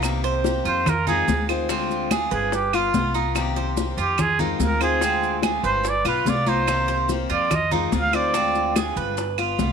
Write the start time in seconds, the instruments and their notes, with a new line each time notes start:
Already playing: upright bass C2, cuban tres D#4
0.02 steel-string acoustic guitar C3 D#3 A#3 C4 G4, high bongo, high conga, claves, maracas
0.23 cuban tres C5, high bongo, high conga, maracas
0.44 steel-string acoustic guitar D#3 A#3 C4 G4, high bongo, high conga, maracas
0.65 upright bass F2, cuban tres F4, trumpet C5, high conga, maracas
0.86 trumpet A#4, muted steel-string acoustic guitar stroke, high bongo, high conga, low conga, claves, maracas
1.07 steel-string acoustic guitar D#3 G#3 C4 F4, cuban tres D#4, trumpet G#4, high bongo, high conga, low conga, maracas
1.27 upright bass D2, steel-string acoustic guitar D#3 G#3 C4 F4, high bongo, low bongo, high conga, maracas
1.49 steel-string acoustic guitar D#3 G#3 C4 F4, cuban tres C5, high bongo, claves, maracas
1.69 steel-string acoustic guitar D3 G#3 C4 F4, cuban tres C4, high bongo, high conga, maracas
1.90 high bongo, high conga, maracas
2.11 steel-string acoustic guitar D3 G#3 C4 F4, cuban tres G#4, high bongo, high conga, claves, maracas
2.31 upright bass G1, trumpet G#4, cuban tres B4, high conga, maracas
2.52 trumpet G4, muted steel-string acoustic guitar stroke, high bongo, high conga, maracas
2.73 steel-string acoustic guitar B3 F4, cuban tres F4, trumpet F4, high bongo, high conga, claves, maracas
2.94 upright bass C2, steel-string acoustic guitar G3 B3 F4, high bongo, low bongo, high conga, maracas
3.14 steel-string acoustic guitar B3 F4, cuban tres D#4, high bongo, maracas
3.35 steel-string acoustic guitar C3 D#3 A#3 C4 G4, high bongo, claves, maracas
3.56 cuban tres C5, high bongo, high conga, maracas
3.77 steel-string acoustic guitar D#3 A#3 C4 G4, high bongo, high conga, maracas
3.97 upright bass F2, cuban tres F4, trumpet G4, high conga, maracas
4.18 trumpet G#4, muted steel-string acoustic guitar stroke, high bongo, high conga, low conga, claves, maracas
4.39 steel-string acoustic guitar D#3 G#3 C4 F4, cuban tres D#4, trumpet F4, high bongo, high conga, low conga, maracas
4.59 upright bass D2, steel-string acoustic guitar D#3 G#3 C4 F4, trumpet A#4, high bongo, low bongo, high conga, maracas
4.81 steel-string acoustic guitar D#3 G#3 C4 F4, trumpet G#4, cuban tres C5, high bongo, high conga, claves, maracas
5.01 steel-string acoustic guitar D3 G#3 C4 F4, cuban tres C4, high bongo, high conga, maracas
5.23 high bongo, high conga, maracas
5.43 steel-string acoustic guitar D3 G#3 C4 F4, cuban tres G#4, high bongo, high conga, claves, maracas
5.63 upright bass G1, cuban tres B4, trumpet C5, high conga, maracas
5.84 muted steel-string acoustic guitar stroke, high bongo, high conga, maracas
5.89 trumpet D5
6.04 upright bass B1, steel-string acoustic guitar B3 F4, cuban tres F4, trumpet B4, high bongo, high conga, claves, maracas
6.25 upright bass C2, steel-string acoustic guitar G3 B3 F4, trumpet D5, high bongo, low bongo, high conga, maracas
6.46 steel-string acoustic guitar B3 F4, cuban tres D#4, trumpet C5, high bongo, high conga, maracas
6.67 steel-string acoustic guitar C3 D#3 A#3 C4 G4, high bongo, high conga, claves, maracas
6.88 cuban tres C5, high bongo, high conga, maracas
7.09 steel-string acoustic guitar D#3 A#3 C4 G4, high bongo, high conga, maracas
7.30 upright bass F2, cuban tres F4, trumpet D5, high conga, maracas
7.51 muted steel-string acoustic guitar stroke, high bongo, high conga, low conga, claves, maracas
7.55 trumpet D#5
7.71 steel-string acoustic guitar D#3 G#3 C4 F4, cuban tres D#4, trumpet C5, high bongo, high conga, low conga, maracas
7.92 upright bass D2, steel-string acoustic guitar D#3 G#3 C4 F4, high bongo, low bongo, high conga, maracas
7.97 trumpet F5
8.13 steel-string acoustic guitar D#3 G#3 C4 F4, cuban tres C5, trumpet D5, high bongo, high conga, claves, maracas
8.34 steel-string acoustic guitar D3 G#3 C4 F4, cuban tres C4, high bongo, high conga, maracas
8.55 high bongo, high conga, maracas
8.76 steel-string acoustic guitar D3 G#3 C4 F4, cuban tres G#4, high bongo, high conga, claves, maracas
8.96 upright bass G1, cuban tres B4, high conga, maracas
9.17 muted steel-string acoustic guitar stroke, high bongo, high conga, maracas
9.38 steel-string acoustic guitar B3 F4, cuban tres F4, high bongo, high conga, claves, maracas
9.58 upright bass C2, steel-string acoustic guitar G3 B3 F4, high bongo, low bongo, high conga, maracas